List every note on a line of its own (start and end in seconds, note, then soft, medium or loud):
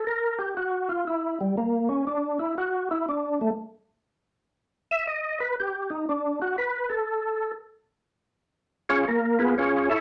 0.07 0.38 A#4 loud
0.39 0.55 G4 medium
0.57 0.88 F#4 medium
0.89 1.05 F4 medium
1.07 1.39 E4 medium
1.41 1.56 G3 medium
1.57 1.89 A#3 medium
1.89 2.05 C#4 medium
2.07 2.38 D4 medium
2.39 2.55 E4 medium
2.58 2.89 F#4 medium
2.91 3.06 E4 medium
3.09 3.39 D4 medium
3.41 3.50 A3 loud
4.91 5.06 E5 loud
5.07 5.39 D#5 medium
5.40 5.56 B4 loud
5.60 5.90 G4 medium
5.90 6.06 D#4 medium
6.09 6.40 D4 medium
6.42 6.56 F#4 medium
6.58 6.89 B4 loud
6.90 7.52 A4 medium
8.89 9.05 C#4 medium
8.89 9.05 F4 medium
8.89 9.05 G#4 medium
8.89 9.05 C#5 medium
9.08 9.39 A#3 medium
9.08 9.39 A#4 medium
9.39 9.55 B3 medium
9.39 9.55 F4 medium
9.39 9.55 G#4 medium
9.39 9.55 B4 medium
9.58 9.89 C#4 medium
9.58 9.89 F4 medium
9.58 9.89 G#4 medium
9.58 9.89 C#5 medium
9.89 10.01 E4 medium
9.89 10.01 A4 medium
9.89 10.01 C#5 medium
9.89 10.01 E5 loud